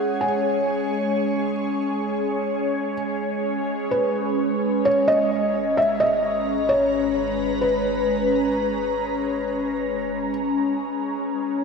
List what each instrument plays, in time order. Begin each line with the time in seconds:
Already playing: ambient pad G#3 C#4 G#4 C#5, felt piano F#5
0.21 felt piano G#5
3.91 synth drone G#1, felt piano B4
4.54 ambient pad A#5
4.85 felt piano C#5
5.08 felt piano D#5
5.59 ambient pad B4
5.77 felt piano E5
6.00 felt piano D#5
6.69 felt piano C#5
7.61 felt piano B4
11.24 synth drone G#1